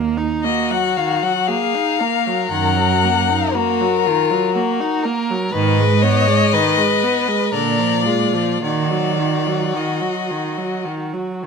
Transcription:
Already playing: cello D#2, viola A#3
0.18 viola D#4
0.43 viola A#3, violin F#4 D#5
0.70 viola F#3, violin F#5
0.96 viola D#3, violin F5
1.23 viola F#3, violin F#5
1.47 viola A#3, violin G#4 F5
1.75 viola D#4
1.99 viola A#3, violin A#4
2.27 viola F#3
2.51 cello F#2, viola D#3, violin F#5
2.77 viola F#3
3.04 viola A#3
3.30 viola D#4
3.54 viola A#3, violin F#4 A#4
3.81 viola F#3
4.06 viola D#3, violin F4
4.31 viola F#3
4.54 viola A#3, violin F#4
4.80 viola D#4
5.03 viola A#3, violin A#4
5.31 viola F#3
5.52 cello G#2, viola D#3, violin B4 D#5
5.80 viola G#3
6.02 viola B3, violin C#5
6.27 viola G#3
6.53 viola D#3, violin B4
6.78 viola G#3
7.03 viola B3
7.28 viola G#3
7.52 cello A#2, viola D3, violin A#4 D5
7.80 viola F3
8.06 viola G#3, violin F4
8.34 viola F3
8.63 viola D#3, cello D#3, violin F#4 D5
8.91 viola F#3
9.18 viola D#3
9.46 viola F#3
9.74 viola D#3, violin D#5
10.02 viola F#3
10.31 viola D#3
10.58 viola F#3
10.85 viola D#3
11.14 viola F#3
11.43 viola D#3

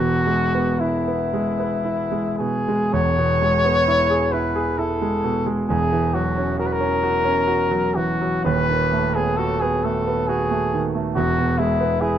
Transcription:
Already playing: grand piano E1 E2, trumpet F#4
0.00 grand piano B2
0.26 grand piano G#3
0.55 grand piano B3
0.80 trumpet E4, grand piano E4
1.08 grand piano B3
1.33 grand piano G#3
1.59 grand piano B3
1.85 grand piano E4
2.11 grand piano G#3
2.38 grand piano B2, trumpet G#4
2.68 grand piano G#3
2.93 grand piano E1 E2, trumpet C#5
3.18 grand piano B2
3.41 grand piano G#3
3.65 grand piano B3
3.88 grand piano E4
4.10 grand piano G#4
4.32 grand piano E4, trumpet B4
4.56 grand piano G#4
4.78 grand piano E4, trumpet A4
5.02 grand piano G#3
5.24 grand piano B2
5.46 grand piano G#3
5.69 grand piano E1 E2, trumpet G#4
5.93 grand piano E3
6.14 grand piano F#3, trumpet F#4
6.38 grand piano C#4
6.59 grand piano F#4, trumpet A#4
6.66 trumpet B4
6.73 trumpet A#4
6.81 grand piano C#4
7.03 grand piano F#4
7.25 grand piano C#4
7.48 grand piano F#4
7.71 grand piano F#3
7.96 grand piano E3, trumpet F#4
8.21 grand piano F#3
8.44 grand piano D#1 D#2, trumpet B4
8.69 grand piano D#3
8.92 grand piano A3
9.15 grand piano B3, trumpet G#4
9.37 grand piano F#4, trumpet A4
9.60 grand piano B3, trumpet G#4
9.84 grand piano A3, trumpet A4
10.07 grand piano B3
10.27 grand piano F#4, trumpet G#4
10.51 grand piano A3
10.73 grand piano D#3
10.95 grand piano A3
11.15 grand piano E1 E2, trumpet F#4
11.38 grand piano B2
11.58 grand piano G#3, trumpet E4
11.80 grand piano B3
12.01 grand piano E4, trumpet G#4

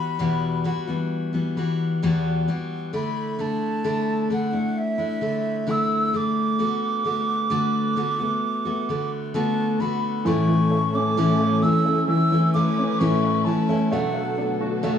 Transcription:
Already playing: steel-string acoustic guitar E3 G3 B3 F#4, flute B5
0.19 steel-string acoustic guitar E2 B2 E3 G3 B3 F#4
0.64 steel-string acoustic guitar E3 G3 B3 F#4
0.87 steel-string acoustic guitar E3 G3 B3 F#4
1.33 steel-string acoustic guitar E3 G3 B3 F#4
1.57 steel-string acoustic guitar E3 G3 B3 F#4
2.03 steel-string acoustic guitar E2 B2 E3 G3 B3 F#4
2.48 steel-string acoustic guitar E3 G3 B3 F#4
2.93 steel-string acoustic guitar D3 A3 D4 E4, flute B5
3.39 steel-string acoustic guitar D3 A3 D4 E4, flute A5
3.84 steel-string acoustic guitar D3 A3 D4 E4
4.30 steel-string acoustic guitar D3 A3 D4 E4, flute F#5
4.52 steel-string acoustic guitar A3 D4 E4
4.78 flute E5
4.98 steel-string acoustic guitar A3 D4 E4
5.21 steel-string acoustic guitar D3 A3 D4 E4
5.67 steel-string acoustic guitar D3 A3 D4 E4, flute E6
6.13 steel-string acoustic guitar D3 A3 D4 E4, flute D6
6.59 steel-string acoustic guitar D3 A3 B3 F#4
7.04 steel-string acoustic guitar D3 A3 B3 F#4
7.50 steel-string acoustic guitar D3 A3 B3 F#4
7.96 steel-string acoustic guitar D3 A3 B3 F#4
8.19 steel-string acoustic guitar A3 B3 F#4
8.65 steel-string acoustic guitar A3 B3 F#4
8.89 steel-string acoustic guitar D3 A3 B3 F#4
9.34 steel-string acoustic guitar D3 A3 B3 F#4, flute A5
9.80 steel-string acoustic guitar D3 A3 B3 F#4, flute B5
10.20 flute B5
10.24 steel-string acoustic guitar A2 E3 A3 C#4 E4, string section E3 C#4 A4, upright piano E3, flute C#6
10.48 upright piano E3
10.71 upright piano A3
10.93 upright piano C#4, flute D6
11.17 steel-string acoustic guitar A2 E3 A3 C#4 E4, upright piano E3
11.40 upright piano A3
11.63 upright piano E3, steel-string acoustic guitar E3 A3 C#4 E4, flute E6
11.85 upright piano A3, steel-string acoustic guitar A3 C#4 E4
12.08 upright piano E3, string section B4, flute E6
12.32 upright piano E3, steel-string acoustic guitar A3 C#4 E4
12.54 steel-string acoustic guitar E3 A3 C#4 E4, upright piano A3, flute D6
12.78 upright piano C#4
12.99 steel-string acoustic guitar A2 E3 A3 C#4 E4, upright piano E3, flute C#6
13.23 upright piano A3
13.45 steel-string acoustic guitar E3 A3 C#4 E4, upright piano E3, flute A5
13.69 upright piano A3, steel-string acoustic guitar A3 C#4 E4
13.91 steel-string acoustic guitar B2 F#3 A3 D4 F#4, string section D3 B3 A4, upright piano A3, flute F#5
14.14 upright piano A3
14.38 upright piano D4
14.61 upright piano F#4
14.83 steel-string acoustic guitar B2 F#3 A3 D4 F#4, upright piano A3

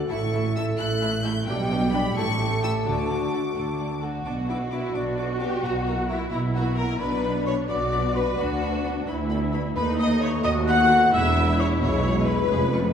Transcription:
Already playing: french horn section A3, clarinet A4, flute F#5
0.09 double bass section A1, cello section A2, viola section A3 E4, french horn section E4, violin section A4 E5 C#6, flute E5
0.32 viola section A3 E4, violin section A4 E5
0.56 viola section A3 E4, violin section A4 E5 E6
0.78 double bass section A1, cello section A2, viola section A3 E4, violin section A4 E5 F#6
1.02 viola section A3 E4, violin section A4 E5
1.24 viola section A3 E4, violin section A4 E5 G6
1.47 double bass section B1, cello section B2, french horn section G3 G4, viola section D4, violin section G4 G5, clarinet G4, flute G5
1.71 viola section D4, violin section G4 G5
1.93 viola section D4, violin section G4 G5 B5
2.16 double bass section A1, cello section A2, viola section A3 E4, french horn section A3, violin section A4 G5 C#6, flute A5
2.39 viola section A3 E4, violin section A4 G5
2.62 viola section A3 E4, violin section A4 G5 E6
2.85 double bass section D2, cello section D3, viola section A3 D4, french horn section F#4, clarinet F#4, violin section A4 F#5 D6
3.09 viola section A3 D4, violin section A4 F#5
3.33 viola section A3 D4, violin section A4 F#5
3.55 double bass section D2, cello section D3, viola section A3 D4, violin section A4 F#5, flute A5
3.79 viola section A3 D4, violin section A4 F#5
4.01 viola section A3 D4, violin section F#4 A4 F#5, flute F#5
4.25 double bass section B1, cello section B2, viola section D4, violin section D6
4.48 french horn section B3 D4, viola section E4, violin section D6
4.71 french horn section B3 D4, violin section E4 D6, viola section F#4, flute E5
4.94 double bass section B1, cello section B2, violin section D4 D6, flute D5
5.17 french horn section B3 D4, violin section D6
5.40 french horn section B3 D4, violin section G4 D6, flute G5
5.63 double bass section B1, cello section B2, violin section F#4 A#5, flute F#5
5.86 french horn section A#3 E4, violin section A#5
6.08 french horn section A#3 E4, violin section E4 A#5, flute E5
6.29 double bass section B1, cello section B2, violin section E4 A#5, viola section E4, flute E5
6.53 french horn section A#3 E4, violin section F#4 A#5, flute F#5
6.76 french horn section A#3 E4, violin section A#4 A#5, flute A#5
7.00 double bass section B1, cello section B2, viola section D4, violin section B4 B5, flute B5
7.24 french horn section B3 D4, violin section B5
7.46 french horn section B3 D4, violin section C#5 B5, flute C#6
7.68 double bass section B1, cello section B2, viola section F#4, violin section D5 B5, flute D6
7.93 french horn section B3 D4, violin section B5
8.15 french horn section B3 D4, violin section B4 B5, flute B5
8.38 cello section D2, double bass section D2, viola section D4, violin section F#4 B5, flute F#5
8.61 french horn section B3 D4, violin section B5
8.84 french horn section B3 D4, violin section B5
9.07 cello section D2, double bass section D2, viola section E4, violin section B5
9.29 french horn section B3 D4, violin section B5
9.53 french horn section B3 D4, violin section B5
9.75 cello section D#2, double bass section D#2, french horn section A3 B3, viola section D#4, violin section B4, flute B5
9.99 violin section D#5 B5, flute D#6
10.22 violin section C#5 B5, flute C#6
10.44 cello section D#2, double bass section D#2, viola section F#4, violin section D#5, flute D#6
10.67 violin section F#5 B5, flute F#6
10.89 violin section B5
11.12 double bass section E1, cello section E2, french horn section G#3, viola section E4, violin section E5, flute E6
11.35 violin section B5
11.58 violin section C#5 B5, flute C#6
11.81 double bass section B1, cello section B2, violin section C#5, flute C#6
12.03 violin section B5
12.27 violin section B4 B5, flute B5
12.50 double bass section F1, cello section F2, french horn section C#4, viola section G#4
12.73 viola section F4, violin section C#6

